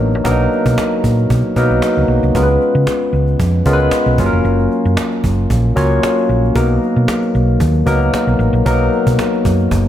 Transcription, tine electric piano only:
Already playing: F#3 A#3 B3 D4 D#4 A#4
0.24 F#3 A#3 B3 D4 A#4
0.31 D#4
1.56 F#3 A#3 B3 D#4 A#4
2.35 G#3 B3 C#4 F4 A#4
2.43 B4
3.66 G#3 B3 C#4 F4 A#4
3.73 B4
4.19 F#3 A#3 C#4 F4 G#4
4.26 A#4
5.76 F#3 A#3 C#4 F4 C#5
6.55 F#3 A#3 B3 D#4 A#4
7.86 F#3 A#3 B3 D#4 A#4
8.65 F#3 A#3 B3 D#4 A#4

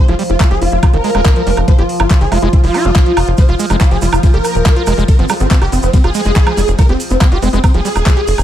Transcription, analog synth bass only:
0.08 F1
0.30 F1
0.51 F1
0.62 F1
0.72 F1
0.93 F1
1.15 D#1
1.47 F1
1.57 F1
1.79 G1
2.00 G1
2.21 F1
2.32 F1
2.42 F1
2.64 F1
2.85 F1
3.17 F1
3.28 F1
3.49 F1
3.70 F1
3.91 F1
4.02 F1
4.13 F1
4.34 F1
4.55 D#1
4.87 F1
4.98 F1
5.19 G1
5.40 G1
5.62 F1
5.72 F1
5.83 F1
6.04 F1
6.25 F1
6.57 F1
6.68 F1
6.89 F1
7.10 F1
7.32 F1
7.42 F1
7.53 F1
7.74 F1
7.96 D#1
8.28 F1
8.38 F1

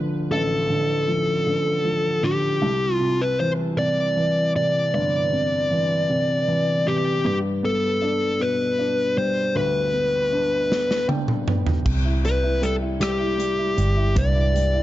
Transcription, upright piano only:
Already playing: D2 D3 F3
0.31 A1
0.70 D3
1.08 F3
1.47 D3
1.84 F3
2.23 D3
2.61 C2
3.00 C3
3.39 E3
3.78 C3
4.17 E3
4.55 C3
4.94 G1
5.32 C3
5.71 E3
6.09 C3
6.48 E3
6.86 C3
7.24 G2
7.63 B3
8.02 D4
8.40 B2
8.79 D4
9.16 G3
9.55 D2
9.94 B3
10.32 D4
10.70 B3
11.08 D4 G5
11.47 B3
11.85 C3
12.04 E4
12.24 G3
12.43 E4
12.62 G3
12.81 E4
13.00 G3
13.19 E4
13.38 G3
13.58 E4
13.77 G3
13.96 E4
14.15 G2
14.35 E4
14.54 G3
14.74 E4

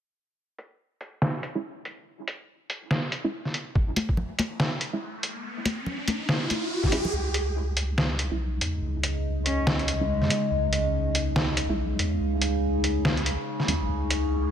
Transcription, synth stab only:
1.55 G#3 C#4 E4
3.24 G#3 C#4 E4
4.93 G#3 C#4 E4
6.92 G#3 C#4 E4
8.31 G#3 C#4 E4
10.01 G#3 C#4 E4
11.69 G#3 C#4 E4
13.68 G#3 C#4 E4

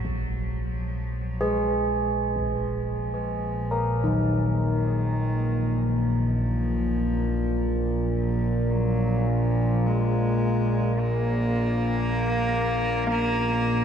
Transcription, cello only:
0.06 F3
2.35 F3
4.66 D#3
5.82 F3
8.12 F3
8.70 F#3
9.29 F3
9.87 G#3
11.00 A#3

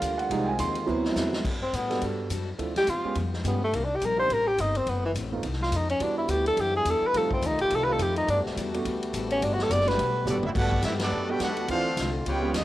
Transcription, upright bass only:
0.01 D2
0.30 C2
0.59 D#2
0.88 D2
1.16 E2
1.45 G2
1.73 A2
2.02 G2
2.30 F#2
2.58 D2
2.87 E2
3.04 muted upright bass stroke
3.15 F2
3.44 G2
3.73 C2
4.01 A#1
4.29 A1
4.58 G1
4.86 F#1
5.14 A1
5.43 C2
5.72 F2
6.00 E2
6.28 D2
6.57 F#2
6.85 E2
7.01 muted upright bass stroke
7.14 F2
7.30 muted upright bass stroke
7.42 D#2
7.51 C2
7.60 A1
7.70 C2
7.98 F2
8.28 G2
8.37 F#2
8.47 D2
8.56 E2
8.85 D2
9.14 A1
9.41 G1
9.70 F#1
9.98 B1
10.25 A1
10.35 G1
10.45 F#1
10.55 G1
10.82 G2
11.12 F#2
11.39 E2
11.68 D2
11.97 C2
12.26 C#2
12.54 D#2

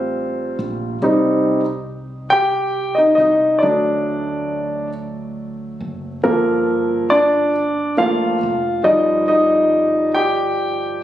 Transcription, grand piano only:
Already playing: G3 A3 C4 F4 C5
1.02 G3 C4 D#4
2.30 G4 G5
2.95 D#4 D#5
3.15 D#5
3.19 D#4
3.59 F#3 A3 D5
3.63 D4
6.23 F3 A#3 A4 A#4
7.10 D4 D5
7.97 F3 A3 A#3 F4 F5
8.84 F3 G3 D#4 D5 D#5
9.28 D#4 D#5
10.14 G4 G5

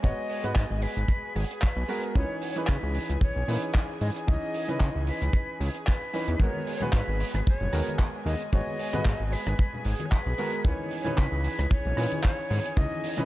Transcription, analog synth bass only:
0.04 G#1
0.44 G#2
0.56 G#2
0.71 G#1
0.97 G#1
1.36 G#1
1.76 B1
2.15 C#2
2.69 C#3
2.83 C#2
3.10 C#2
3.21 B1
3.36 B1
3.48 A#2
4.01 G#2
4.28 C#2
4.69 C#3
4.80 C#3
4.95 C#2
5.22 C#2
5.60 C#2
6.28 E2
6.40 G#1
6.93 G#2
7.08 G#1
7.34 G#1
7.47 F#1
7.61 F#1
7.73 D#2
8.26 D#2
8.53 G#1
8.94 G#2
9.05 G#2
9.20 G#1
9.47 G#1
9.85 G#1
10.26 B1
10.65 C#2
11.18 C#3
11.32 C#2
11.59 C#2
11.71 B1
11.86 B1
11.97 A#2
12.51 G#2
12.77 C#2
13.18 C#3

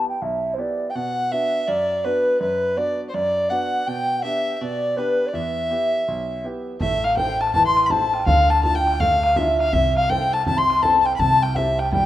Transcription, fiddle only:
0.90 G5
0.95 F#5
1.32 E5
1.68 D5
2.04 B4
2.40 B4
2.77 D5
3.09 C5
3.14 D5
3.50 F#5
3.87 G5
4.24 E5
4.56 E5
4.62 D5
4.98 B4
5.28 D5
5.34 E5
6.81 E5
7.04 F5
7.17 G5
7.41 A5
7.54 A5
7.66 C6
7.86 B5
7.90 A5
8.27 F5
8.50 A5
8.64 A5
8.75 G5
9.00 F5
9.36 E5
9.60 F5
9.73 E5
9.97 F5
10.10 G5
10.33 A5
10.47 A5
10.58 C6
10.83 A5
11.01 A5
11.06 G5
11.16 A5 B5
11.42 G5
11.56 E5
11.79 G5
11.93 G5

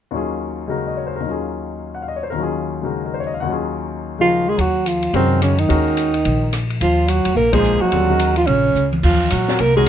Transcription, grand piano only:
0.11 D#2 D#3 F#3 C#4 F4
0.16 G#4
0.67 C#3 G#3 D#4 F#4 A#4
0.87 D#5
0.97 C#5
1.06 C5
1.16 A#4
1.20 D#2 D#3
1.24 F#3 C#4
1.29 F4 G#4
1.95 F#5
2.02 F5
2.08 D#5
2.16 C#5
2.23 C5
2.30 D#2 D#3 A#4
2.36 F#3 C#4
2.41 F4 G#4
2.82 C#3 G#3 D#4 F#4 A#4
3.06 A#4
3.14 C5
3.20 C#5
3.27 D#5
3.34 F5
3.40 D#2 D#3 F#5
3.46 F#3 C#4
3.51 F4 G#4
4.18 C#3 G#3 D#4 F#4 A#4
5.14 D#3 G#3 C#4 F#4 A#4
5.69 D#3 G#3 C#4 F#4 A#4
7.53 F3 A#3 D#4 G#4 C5
7.93 D3 G3 C4 F4 A4
8.10 D#3 G#3 C#4 F#4 A#4
9.49 F#3 C4 F4 A#4 C#5
9.77 D#3 G#3 C#4 F#4 A#4

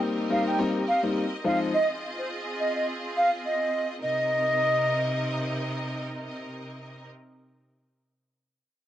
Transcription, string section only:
Already playing: C4 G4 A#4 D#5
1.45 F4 G#4
4.02 C3 C4 D#4 A#4 D#5

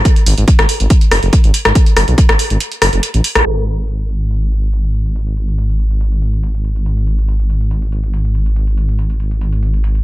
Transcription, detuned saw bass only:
0.26 G#1
0.37 G#1
0.59 G#1
0.80 G#1
1.12 F#1
1.23 F#1
1.44 G#1
1.65 G#1
1.97 F#1
2.08 B1
2.29 G#1
2.50 G#1
2.82 F#1
2.93 F#1
3.14 A1
3.35 A1
3.45 G#1

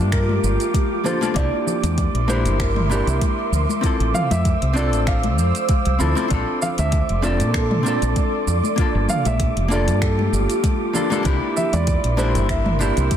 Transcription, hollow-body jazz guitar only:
Already playing: A#3 D4 F4 A5
1.04 A#3 D4 F4 A4
1.21 A#3 D4 F4 A4
1.34 A#3 D4 E4
1.39 G4
2.28 A#3 D4 E4 G4
2.89 A#3 D4 E4 G4
3.81 C4 E4 F4
3.86 A4
4.73 C4 D4 F4
4.79 A4
5.99 C4 E4 F4 A4
6.15 C4 E4 F4 A4
6.28 C4 D4 F4
6.33 A4
7.22 C4 D4 F4 A4
7.83 C4 D4 F4
7.88 A4
8.76 A#3 D4 F4
8.81 A4
9.68 A#3 D4 F4
9.73 A4
10.93 A#3 D4 F4 A4
11.10 A#3 D4 F4 A4
11.23 A#3 D4 E4
11.28 G4
12.17 A#3 D4 E4 G4
12.79 A#3 D4 E4 G4

